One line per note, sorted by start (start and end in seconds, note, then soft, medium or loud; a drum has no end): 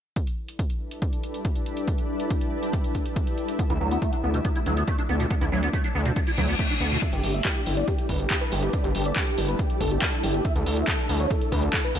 0.16 3.56 G3 medium
0.16 3.56 D4 medium
0.16 6.98 E4 medium
0.16 3.56 A4 medium
0.16 3.56 B4 medium
0.16 kick loud
0.16 closed hi-hat medium
0.27 closed hi-hat medium
0.48 closed hi-hat soft
0.59 kick loud
0.59 closed hi-hat medium
0.70 closed hi-hat soft
0.91 closed hi-hat soft
1.02 kick loud
1.02 closed hi-hat medium
1.13 closed hi-hat soft
1.23 closed hi-hat medium
1.34 closed hi-hat soft
1.45 kick loud
1.45 closed hi-hat medium
1.56 closed hi-hat soft
1.66 closed hi-hat soft
1.77 closed hi-hat medium
1.88 kick loud
1.88 closed hi-hat medium
1.98 closed hi-hat soft
2.20 closed hi-hat soft
2.30 kick loud
2.30 closed hi-hat medium
2.41 closed hi-hat soft
2.63 closed hi-hat soft
2.73 kick loud
2.73 closed hi-hat medium
2.84 closed hi-hat soft
2.95 kick medium
2.95 closed hi-hat medium
3.06 closed hi-hat soft
3.16 kick loud
3.16 closed hi-hat medium
3.27 closed hi-hat soft
3.38 closed hi-hat soft
3.48 closed hi-hat medium
3.59 6.99 A3 medium
3.59 3.63 B3 medium
3.59 6.99 D4 medium
3.59 kick loud
3.59 closed hi-hat medium
3.70 3.79 D2 loud
3.70 3.73 E4 medium
3.70 closed hi-hat soft
3.81 3.98 D2 medium
3.81 3.89 F#3 loud
3.91 3.97 B3 medium
3.91 closed hi-hat medium
4.02 4.11 A3 medium
4.02 kick loud
4.02 closed hi-hat medium
4.13 4.16 D4 medium
4.13 closed hi-hat soft
4.23 4.41 D2 medium
4.23 4.29 B3 loud
4.34 4.40 B2 medium
4.34 closed hi-hat soft
4.45 4.48 B3 medium
4.45 kick loud
4.45 closed hi-hat medium
4.56 4.59 E4 medium
4.56 closed hi-hat soft
4.66 4.84 D2 medium
4.66 4.75 F#3 loud
4.66 closed hi-hat medium
4.77 4.83 B3 medium
4.77 closed hi-hat soft
4.88 4.96 A3 medium
4.88 kick loud
4.88 closed hi-hat medium
4.98 5.02 D4 medium
4.98 closed hi-hat soft
5.09 5.27 D2 medium
5.09 5.15 B3 loud
5.09 closed hi-hat soft
5.20 5.26 B2 medium
5.20 closed hi-hat soft
5.31 5.34 B3 medium
5.31 kick loud
5.31 closed hi-hat medium
5.41 5.50 D2 loud
5.41 5.45 E4 medium
5.41 closed hi-hat soft
5.52 5.69 D2 medium
5.52 5.61 F#3 loud
5.63 5.68 B3 medium
5.63 closed hi-hat soft
5.73 5.82 A3 medium
5.73 kick loud
5.73 closed hi-hat medium
5.84 5.88 D4 medium
5.84 closed hi-hat soft
5.95 6.12 D2 medium
5.95 6.01 B3 loud
6.05 6.11 B2 medium
6.05 closed hi-hat soft
6.16 6.20 B3 medium
6.16 kick loud
6.16 closed hi-hat medium
6.16 reverse cymbal medium
6.27 6.31 E4 medium
6.27 closed hi-hat soft
6.38 6.55 D2 medium
6.38 6.46 F#3 loud
6.38 kick medium
6.38 closed hi-hat medium
6.48 6.54 B3 medium
6.48 closed hi-hat soft
6.59 6.68 A3 medium
6.59 kick loud
6.59 closed hi-hat medium
6.70 6.73 D4 medium
6.70 closed hi-hat soft
6.81 6.98 D2 medium
6.81 6.86 B3 medium
6.81 closed hi-hat soft
6.91 6.97 B2 medium
6.91 closed hi-hat soft
7.02 10.42 G3 medium
7.02 11.99 D4 medium
7.02 11.99 E4 medium
7.02 10.42 A4 medium
7.02 10.42 B4 medium
7.02 7.11 E5 loud
7.02 kick loud
7.02 closed hi-hat medium
7.02 crash medium
7.13 7.21 G1 loud
7.13 7.22 G4 medium
7.13 closed hi-hat medium
7.23 7.41 G1 medium
7.23 7.33 G4 medium
7.23 open hi-hat loud
7.34 7.43 E5 loud
7.34 closed hi-hat medium
7.45 7.54 G4 medium
7.45 kick loud
7.45 clap loud
7.45 closed hi-hat medium
7.55 7.65 G4 medium
7.55 closed hi-hat medium
7.66 7.84 G1 medium
7.66 7.76 G4 medium
7.66 open hi-hat loud
7.77 7.86 D5 medium
7.77 closed hi-hat medium
7.88 7.97 G4 medium
7.88 kick loud
7.88 closed hi-hat medium
7.98 8.08 G4 medium
7.98 closed hi-hat medium
8.09 8.27 G1 medium
8.09 8.18 B4 medium
8.09 kick medium
8.09 open hi-hat loud
8.20 8.29 G4 medium
8.20 closed hi-hat medium
8.30 8.40 G4 medium
8.30 kick loud
8.30 clap loud
8.30 closed hi-hat medium
8.41 8.51 B4 medium
8.41 closed hi-hat medium
8.52 8.69 G1 medium
8.52 8.61 G4 medium
8.52 open hi-hat loud
8.63 8.72 G4 medium
8.63 closed hi-hat medium
8.73 8.83 D5 loud
8.73 kick loud
8.73 closed hi-hat medium
8.84 8.93 G1 loud
8.84 8.93 G4 medium
8.84 closed hi-hat medium
8.95 9.12 G1 medium
8.95 9.04 G4 medium
8.95 open hi-hat loud
9.05 9.15 D5 loud
9.05 closed hi-hat medium
9.16 9.26 G4 medium
9.16 kick loud
9.16 clap loud
9.16 closed hi-hat medium
9.27 9.36 G4 medium
9.27 closed hi-hat medium
9.38 9.55 G1 medium
9.38 9.47 G4 medium
9.38 open hi-hat loud
9.48 9.58 B4 medium
9.48 closed hi-hat medium
9.59 9.69 G4 medium
9.59 kick loud
9.59 closed hi-hat medium
9.70 9.79 G4 medium
9.70 closed hi-hat soft
9.81 9.98 G1 medium
9.81 9.90 A4 medium
9.81 kick medium
9.81 open hi-hat loud
9.91 10.01 G4 medium
9.91 closed hi-hat soft
10.02 10.11 G4 medium
10.02 kick loud
10.02 clap loud
10.02 closed hi-hat medium
10.13 10.22 A4 medium
10.13 closed hi-hat medium
10.23 10.41 G1 medium
10.23 10.33 G4 medium
10.23 open hi-hat loud
10.34 10.44 G4 medium
10.34 closed hi-hat medium
10.45 11.99 A3 medium
10.45 10.54 E5 loud
10.45 kick loud
10.45 closed hi-hat medium
10.56 10.64 D2 loud
10.56 10.65 A4 medium
10.56 closed hi-hat medium
10.66 10.84 D2 medium
10.66 10.76 A4 medium
10.66 open hi-hat loud
10.77 10.86 E5 loud
10.77 closed hi-hat medium
10.88 10.97 A4 medium
10.88 kick loud
10.88 clap loud
10.88 closed hi-hat medium
10.99 11.08 A4 medium
10.99 closed hi-hat medium
11.09 11.27 D2 medium
11.09 11.19 A4 medium
11.09 open hi-hat loud
11.20 11.29 C#5 medium
11.20 closed hi-hat soft
11.31 11.40 A4 medium
11.31 kick loud
11.31 closed hi-hat medium
11.41 11.51 A4 medium
11.41 closed hi-hat soft
11.52 11.69 D2 loud
11.52 11.61 B4 medium
11.52 kick medium
11.52 open hi-hat loud
11.63 11.72 A4 medium
11.63 closed hi-hat soft
11.73 11.83 A4 medium
11.73 kick loud
11.73 clap loud
11.73 closed hi-hat medium
11.84 11.94 B4 medium
11.84 closed hi-hat soft
11.95 11.99 D2 medium
11.95 11.99 A4 medium
11.95 open hi-hat loud